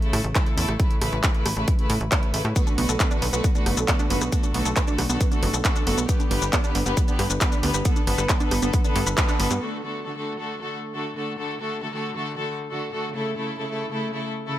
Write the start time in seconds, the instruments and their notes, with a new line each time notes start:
0.02 string section C#3 A3 E4 A4, closed hi-hat
0.13 analog synth bass A2, cross-stick, open hi-hat
0.24 analog synth bass A1, closed hi-hat
0.35 string section C#3 A3 E4 A4, kick, clap, closed hi-hat
0.47 closed hi-hat
0.57 analog synth bass E2, string section C#3 A3 E4 A4, open hi-hat
0.68 analog synth bass A1, cross-stick, closed hi-hat
0.80 string section C#3 A3 E4 B4, kick, closed hi-hat
0.91 closed hi-hat
1.01 analog synth bass A1, string section C#3 A3 E4 B4, cross-stick, open hi-hat
1.13 analog synth bass A1, closed hi-hat
1.24 string section C#3 A3 E4 B4, kick, clap, closed hi-hat
1.35 string section C#3 A3 E4 B4, closed hi-hat
1.46 analog synth bass A1, cross-stick, open hi-hat
1.57 analog synth bass A1, string section C#3 A3 E4 B4, closed hi-hat
1.68 kick, closed hi-hat
1.79 string section C#3 A3 E4 B4, closed hi-hat
1.90 analog synth bass A2, open hi-hat
2.01 analog synth bass A1, closed hi-hat
2.12 string section C#3 A3 E4 B4, kick, clap, closed hi-hat
2.23 closed hi-hat
2.34 analog synth bass A1, string section C#3 A3 E4 B4, open hi-hat
2.45 analog synth bass A2, cross-stick, closed hi-hat
2.56 string section D3 A3 F#4 B4, synth pluck B3, kick, closed hi-hat, shaker
2.67 synth pluck D4, closed hi-hat, shaker
2.78 analog synth bass B1, string section D3 A3 F#4 B4, synth pluck B3, open hi-hat
2.89 analog synth bass B1, synth pluck A4, closed hi-hat, shaker
3.00 string section D3 A3 F#4 B4, synth pluck B3, kick, clap, closed hi-hat, shaker
3.11 string section D3 A3 F#4 B4, synth pluck D4, closed hi-hat, shaker
3.22 analog synth bass B1, synth pluck B3, open hi-hat
3.33 analog synth bass B1, string section D3 A3 F#4 B4, synth pluck B3, closed hi-hat, shaker
3.44 synth pluck B3, kick, closed hi-hat, shaker
3.55 string section D3 A3 F#4 B4, synth pluck D4, closed hi-hat, shaker
3.66 analog synth bass F#1, synth pluck B3, cross-stick, open hi-hat
3.77 analog synth bass B1, synth pluck A4, closed hi-hat, shaker
3.88 string section D3 A3 F#4 B4, synth pluck B3, kick, clap, closed hi-hat, shaker
3.99 synth pluck D4, closed hi-hat, shaker
4.10 analog synth bass F#1, string section D3 A3 F#4 B4, synth pluck B3, open hi-hat
4.21 analog synth bass B1, synth pluck B3, cross-stick, closed hi-hat, shaker
4.32 string section D3 A3 F#4 A4, synth pluck B3, kick, closed hi-hat, shaker
4.43 synth pluck D4, closed hi-hat, shaker
4.54 analog synth bass B1, string section D3 A3 F#4 A4, synth pluck B3, open hi-hat
4.65 analog synth bass B1, synth pluck A4, closed hi-hat, shaker
4.76 string section D3 A3 F#4 A4, synth pluck B3, kick, clap, closed hi-hat, shaker
4.88 string section D3 A3 F#4 A4, synth pluck D4, closed hi-hat, shaker
4.98 analog synth bass B1, synth pluck B3, cross-stick, open hi-hat
5.09 analog synth bass B1, string section D3 A3 F#4 A4, synth pluck B3, closed hi-hat, shaker
5.21 synth pluck B3, kick, closed hi-hat, shaker
5.32 string section D3 A3 F#4 A4, synth pluck D4, closed hi-hat, shaker
5.43 analog synth bass F#1, synth pluck B3, open hi-hat
5.54 analog synth bass B1, synth pluck A4, closed hi-hat, shaker
5.64 string section D3 A3 F#4 A4, synth pluck B3, kick, clap, closed hi-hat, shaker
5.76 synth pluck D4, closed hi-hat, shaker
5.87 analog synth bass F#1, string section D3 A3 F#4 A4, synth pluck B3, open hi-hat
5.98 analog synth bass B1, synth pluck B3, closed hi-hat, shaker
6.09 string section D3 B3 G4 B4, synth pluck B3, kick, closed hi-hat, shaker
6.20 synth pluck D4, closed hi-hat, shaker
6.31 analog synth bass G1, string section D3 B3 G4 B4, synth pluck B3, open hi-hat
6.42 analog synth bass G1, synth pluck B4, closed hi-hat, shaker
6.53 string section D3 B3 G4 B4, synth pluck B3, kick, clap, closed hi-hat, shaker
6.64 string section D3 B3 G4 B4, synth pluck D4, closed hi-hat, shaker
6.75 analog synth bass G1, synth pluck B3, open hi-hat
6.86 analog synth bass G1, string section D3 B3 G4 B4, synth pluck B3, closed hi-hat, shaker
6.97 synth pluck B3, kick, closed hi-hat, shaker
7.08 string section D3 B3 G4 B4, synth pluck D4, closed hi-hat, shaker
7.19 analog synth bass G2, synth pluck B3, cross-stick, open hi-hat
7.30 analog synth bass G1, synth pluck B4, closed hi-hat, shaker
7.41 string section D3 B3 G4 B4, synth pluck B3, kick, clap, closed hi-hat, shaker
7.52 synth pluck D4, closed hi-hat, shaker
7.63 analog synth bass D2, string section D3 B3 G4 B4, synth pluck B3, open hi-hat
7.74 analog synth bass G1, synth pluck B3, cross-stick, closed hi-hat, shaker
7.85 string section D3 B3 A4 B4, synth pluck B3, kick, closed hi-hat, shaker
7.96 synth pluck D4, closed hi-hat, shaker
8.07 analog synth bass G1, string section D3 B3 A4 B4, synth pluck B3, cross-stick, open hi-hat
8.18 analog synth bass G1, synth pluck B4, cross-stick, closed hi-hat, shaker
8.29 string section D3 B3 A4 B4, synth pluck B3, kick, clap, closed hi-hat, shaker
8.40 string section D3 B3 A4 B4, synth pluck D4, closed hi-hat, shaker
8.51 analog synth bass G1, synth pluck B3, cross-stick, open hi-hat
8.62 analog synth bass G1, string section D3 B3 A4 B4, synth pluck B3, shaker
8.73 synth pluck B3, kick, closed hi-hat, shaker
8.84 string section D3 B3 A4 B4, synth pluck D4, closed hi-hat, shaker
8.96 analog synth bass G2, synth pluck B3, open hi-hat
9.07 analog synth bass G1, synth pluck B4, closed hi-hat, shaker
9.18 string section D3 B3 A4 B4, synth pluck B3, kick, clap, closed hi-hat, shaker
9.29 synth pluck D4, closed hi-hat, shaker
9.40 analog synth bass G1, string section D3 B3 A4 B4, synth pluck B3, open hi-hat
9.51 analog synth bass G2, synth pluck B3, cross-stick, closed hi-hat, shaker
9.62 string section D3 A3 F#4 A4
9.84 string section D3 A3 F#4 A4
10.06 string section D3 A3 F#4 A4
10.17 string section D3 A3 F#4 A4
10.39 string section D3 A3 F#4 A4
10.61 string section D3 A3 F#4 A4
10.94 string section D3 A3 F#4 A4
11.16 string section D3 A3 F#4 A4
11.38 string section D3 A3 F#4 A4
11.60 string section D3 A3 F#4 A4
11.82 string section D3 A3 F#4 A4
11.93 string section D3 A3 F#4 A4
12.16 string section D3 A3 F#4 A4
12.38 string section D3 A3 F#4 A4
12.71 string section D3 A3 F#4 A4
12.93 string section D3 A3 F#4 A4
13.15 string section C#3 A3 E4 A4
13.37 string section C#3 A3 E4 A4
13.59 string section C#3 A3 E4 A4
13.70 string section C#3 A3 E4 A4
13.92 string section C#3 A3 E4 A4
14.14 string section C#3 A3 E4 A4
14.47 string section C#3 A3 E4 A4